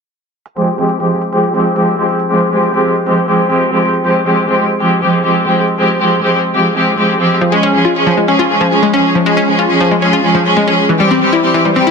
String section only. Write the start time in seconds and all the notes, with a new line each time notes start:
0.57 F3 G#3 C4 G4
0.78 F3 G#3 C4 G4
1.00 F3 G#3 C4 G4
1.33 F3 G#3 C4 G4
1.54 F3 G#3 C4 G4
1.76 F3 G#3 C4 G4
1.98 F3 G#3 C4 G4
2.30 F3 G#3 C4 G4
2.52 F3 G#3 C4 G4
2.74 F3 G#3 C4 G4
3.07 F3 G#3 C4 G4
3.28 F3 G#3 C4 G4
3.50 F3 G#3 C4 G4
3.72 F3 G#3 C4 G4
4.04 F3 G#3 C4 G4
4.26 F3 G#3 C4 G4
4.48 F3 G#3 C4 G4
4.80 F3 G#3 C4 G4
5.02 F3 G#3 C4 G4
5.24 F3 G#3 C4 G4
5.46 F3 G#3 C4 G4
5.78 F3 G#3 C4 G4
6.00 F3 G#3 C4 G4
6.22 F3 G#3 C4 G4
6.54 F3 G#3 C4 G4
6.76 F3 G#3 C4 G4
6.98 F3 G#3 C4 G4
7.19 F3 G#3 C4 G4
7.52 F3 G#3 C#4 G#4
7.74 F3 G#3 C#4 G#4
7.95 F3 G#3 C#4 G#4
8.28 F3 G#3 C#4 G#4
8.50 F3 G#3 C#4 G#4
8.72 F3 G#3 C#4 G#4
8.93 F3 G#3 C#4 G#4
9.26 F3 G#3 C#4 G#4
9.48 F3 G#3 C#4 G#4
9.70 F3 G#3 C#4 G#4
10.02 F3 G#3 C#4 G#4
10.24 F3 G#3 C#4 G#4
10.46 F3 G#3 C#4 G#4
10.67 F3 G#3 C#4 G#4
11.00 E3 G3 C4 G4
11.22 E3 G3 C4 G4
11.43 E3 G3 C4 G4
11.76 E3 G3 C4 G4